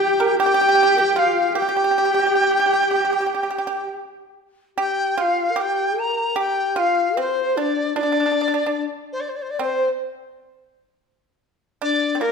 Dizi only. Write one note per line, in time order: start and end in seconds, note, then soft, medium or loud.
0.00 0.36 G5 loud
0.40 1.20 G5 loud
1.18 1.56 F5 medium
1.56 3.92 G5 loud
4.80 5.22 G5 medium
5.21 5.61 F5 medium
5.59 6.00 G5 medium
5.99 6.38 A#5 medium
6.39 6.80 G5 medium
6.79 7.18 F5 medium
7.19 7.59 C5 medium
7.58 7.96 D5 medium
7.97 8.82 D5 medium
9.12 9.22 C5 medium
9.20 9.30 D5 soft
9.29 9.37 C5 soft
9.36 9.43 D5 medium
9.42 9.52 C5 medium
9.50 9.60 D5 medium
9.59 9.89 C5 medium
11.82 12.22 D5 loud
12.20 12.32 A#4 medium